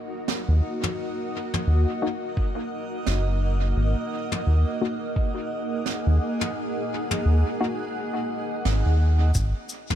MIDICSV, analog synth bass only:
0, 0, Header, 1, 2, 480
1, 0, Start_track
1, 0, Tempo, 697674
1, 672, Time_signature, 4, 2, 24, 8
1, 6848, End_track
2, 0, Start_track
2, 0, Title_t, "Analog synth bass"
2, 0, Program_c, 0, 38
2, 333, Note_on_c, 0, 39, 105
2, 420, Note_off_c, 0, 39, 0
2, 1150, Note_on_c, 0, 39, 87
2, 1277, Note_off_c, 0, 39, 0
2, 2111, Note_on_c, 0, 30, 87
2, 2573, Note_off_c, 0, 30, 0
2, 2591, Note_on_c, 0, 32, 97
2, 2717, Note_off_c, 0, 32, 0
2, 3073, Note_on_c, 0, 39, 86
2, 3198, Note_off_c, 0, 39, 0
2, 4174, Note_on_c, 0, 39, 105
2, 4260, Note_off_c, 0, 39, 0
2, 4991, Note_on_c, 0, 39, 87
2, 5117, Note_off_c, 0, 39, 0
2, 5952, Note_on_c, 0, 32, 103
2, 6078, Note_off_c, 0, 32, 0
2, 6094, Note_on_c, 0, 39, 90
2, 6413, Note_off_c, 0, 39, 0
2, 6433, Note_on_c, 0, 32, 100
2, 6558, Note_off_c, 0, 32, 0
2, 6848, End_track
0, 0, End_of_file